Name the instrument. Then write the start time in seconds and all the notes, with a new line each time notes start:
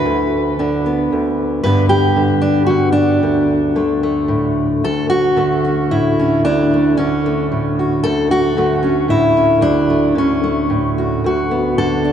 steel-string acoustic guitar
Already playing: D3 B4
0.05 D2
0.59 D3 D4
0.86 B3
1.12 D2
1.64 G2 D3 B3 D4 B4
1.89 G4
2.16 D3
2.42 D4
2.66 D3 F#4
2.92 D4
3.23 D2
3.76 D3 A3
4.03 A3
4.28 A2
4.84 D2 A4
5.10 F#4
5.37 D3 A3
5.65 C#4
5.91 A2 E4
6.19 C#4
6.44 D2 D4
6.74 A3
6.97 D3 C#4
7.26 A3
7.52 A2
7.79 F#4
8.04 D2 A4
8.31 F#4
8.57 D3 A3
8.83 C#4
9.08 A2 E4
9.37 C#4
9.61 D2 D4
9.90 A3
10.15 D3 C#4
10.44 A3
10.70 A2
10.98 F#4
11.24 D2 F#4
11.51 B3
11.78 D3 A4
12.05 D4